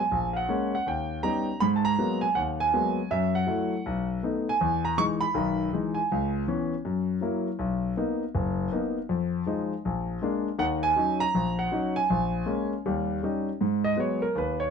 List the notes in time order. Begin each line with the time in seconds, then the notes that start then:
Already playing: G#5
0.11 A#1
0.33 F5 F#5
0.49 G#3 A#3 C#4
0.75 F#5
0.86 D#2 G5
1.23 G3 B3 C#4 D#4 A#5
1.60 G#2 B5
1.76 A5
1.85 A#5
1.99 F#3 G#3 A#3 B3
2.21 G#5
2.35 D#2 F#5
2.60 G#5
2.74 F#3 G#3 A#3 B3
3.11 F#2 E5
3.35 F#5
3.47 F#3 A3 E4
3.86 B1
4.23 A3 B3 D#4
4.49 G#5
4.61 E2
4.85 A#5
4.98 E3 G#3 D#4 C#6
5.21 B5
5.34 B1 D#3
5.73 E3 G#3 D#4
5.94 G#5
6.12 C#2
6.48 E3 B3 C#4
6.85 F#2
7.21 F#3 A#3 E4
7.59 B1
7.97 A#3 B3 D#4
8.35 F#1
8.72 A#3 B3 D#4
9.09 F2
9.46 F3 G#3 D#4
9.85 A#1
10.22 G#3 A#3 D4
10.59 D#2 D#3 F#5
10.83 G#5
10.96 F#3 C#4 D#4
11.20 A#5
11.35 A#1
11.59 F#5
11.72 F#3 C#4 D#4
11.96 G#5
12.10 A#1
12.46 G#3 A#3 C#4
12.86 D#2 G3
13.23 G3 C#4 D#4
13.61 G#2
13.84 D#5
13.96 F#3 G#3 B3 C#5
14.22 A#4
14.35 D#2 B4
14.60 C#5